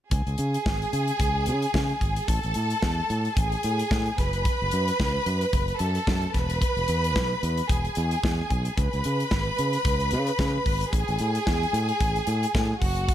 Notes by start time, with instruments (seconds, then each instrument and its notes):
0.11 fingered electric bass C#2, string section G#4 G#5, kick, closed hi-hat
0.27 fingered electric bass C#2, closed hi-hat
0.38 fingered electric bass C#3, closed hi-hat
0.54 closed hi-hat
0.66 fingered electric bass G#1, kick, snare
0.82 closed hi-hat
0.93 fingered electric bass C#3, closed hi-hat
1.08 closed hi-hat
1.19 fingered electric bass C#2, kick, closed hi-hat
1.46 fingered electric bass C#3, closed hi-hat
1.62 closed hi-hat
1.74 fingered electric bass C#3, kick, snare
1.89 closed hi-hat
2.01 fingered electric bass G#1, kick, closed hi-hat
2.16 closed hi-hat
2.27 fingered electric bass A1, string section A4 A5, kick, closed hi-hat
2.43 fingered electric bass A1, closed hi-hat
2.54 fingered electric bass A2, closed hi-hat
2.70 closed hi-hat
2.82 fingered electric bass E2, kick, snare
3.10 fingered electric bass A2, closed hi-hat
3.25 closed hi-hat
3.36 fingered electric bass A1, string section G#4 G#5, kick, closed hi-hat
3.52 closed hi-hat
3.63 fingered electric bass A2, closed hi-hat
3.79 closed hi-hat
3.91 fingered electric bass A2, kick, snare
4.06 closed hi-hat
4.18 fingered electric bass F#1, string section B4 B5, kick, snare, closed hi-hat
4.33 closed hi-hat
4.45 kick, closed hi-hat
4.62 fingered electric bass F#1
4.71 fingered electric bass F#2, closed hi-hat
4.88 closed hi-hat
5.00 fingered electric bass C#2, kick, snare
5.26 fingered electric bass F#2, closed hi-hat
5.41 closed hi-hat
5.53 fingered electric bass F#1, kick, closed hi-hat
5.68 closed hi-hat
5.79 fingered electric bass F#2, string section A4 A5, closed hi-hat
5.95 closed hi-hat
6.07 fingered electric bass F#2, kick, snare
6.22 closed hi-hat
6.34 fingered electric bass E1, string section B4 B5, kick, snare, closed hi-hat
6.50 closed hi-hat
6.62 kick, closed hi-hat
6.77 fingered electric bass E1, closed hi-hat
6.88 fingered electric bass E2, closed hi-hat
7.04 closed hi-hat
7.16 fingered electric bass B1, kick, snare
7.43 fingered electric bass E2, closed hi-hat
7.57 closed hi-hat
7.69 fingered electric bass E1, string section G#4 G#5, kick, closed hi-hat
7.85 closed hi-hat
7.95 fingered electric bass E2, closed hi-hat
8.11 closed hi-hat
8.23 fingered electric bass E2, kick, snare
8.50 fingered electric bass B1, kick, closed hi-hat
8.65 closed hi-hat
8.77 fingered electric bass C#2, string section B4 B5, kick, closed hi-hat
8.93 fingered electric bass C#2, closed hi-hat
9.04 fingered electric bass C#3, closed hi-hat
9.20 closed hi-hat
9.31 fingered electric bass G#1, kick, snare
9.58 fingered electric bass C#3, closed hi-hat
9.73 closed hi-hat
9.85 fingered electric bass C#2, kick, closed hi-hat
10.00 closed hi-hat
10.11 fingered electric bass C#3, closed hi-hat
10.27 closed hi-hat
10.39 fingered electric bass C#3, kick, snare
10.66 fingered electric bass G#1, kick, open hi-hat
10.81 closed hi-hat
10.93 fingered electric bass A1, string section G#4 G#5, kick, closed hi-hat
11.08 fingered electric bass A1, closed hi-hat
11.19 fingered electric bass A2, closed hi-hat
11.35 closed hi-hat
11.47 fingered electric bass E2, kick, snare
11.63 closed hi-hat
11.73 fingered electric bass A2, closed hi-hat
11.89 closed hi-hat
12.01 fingered electric bass A1, kick, closed hi-hat
12.16 closed hi-hat
12.27 fingered electric bass A2, closed hi-hat
12.43 closed hi-hat
12.55 fingered electric bass A2, kick, snare
12.82 fingered electric bass F#1, string section F#4 F#5, kick, open hi-hat
12.97 closed hi-hat
13.09 kick, closed hi-hat